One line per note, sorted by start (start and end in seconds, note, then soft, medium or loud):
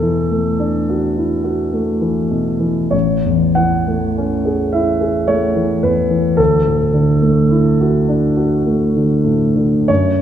0.00 2.88 E2 soft
0.00 0.20 B2 soft
0.00 0.48 E3 soft
0.00 2.91 A4 medium
0.31 0.77 A3 soft
0.59 1.05 D4 soft
0.89 1.34 F#4 soft
1.17 1.62 E4 soft
1.44 1.90 F#4 soft
1.73 2.19 A3 soft
2.01 2.49 E3 soft
2.31 2.80 B2 soft
2.60 2.93 E3 soft
2.91 6.34 A1 soft
2.91 3.56 C#5 medium
3.25 3.75 E2 soft
3.55 4.05 E3 soft
3.55 4.73 F#5 medium
3.87 4.34 A3 soft
4.18 4.63 C#4 soft
4.45 4.91 G#4 soft
4.73 5.19 E4 soft
4.73 5.29 E5 soft
5.01 5.45 G#4 soft
5.28 5.72 A3 soft
5.28 5.83 C#5 medium
5.55 6.00 E3 soft
5.83 6.27 E2 soft
5.83 6.38 B4 soft
6.10 6.38 E3 soft
6.37 9.85 D2 soft
6.37 9.88 A4 medium
6.66 7.11 A2 soft
6.93 7.40 D3 soft
7.22 7.68 A3 soft
7.51 7.97 E4 soft
7.81 8.26 F#4 soft
8.09 8.55 D4 soft
8.37 8.83 F#4 soft
8.66 9.13 A3 soft
8.96 9.44 D3 soft
9.24 9.75 A2 soft
9.56 9.89 D3 soft
9.88 10.22 F#2 soft
9.88 10.22 C#5 medium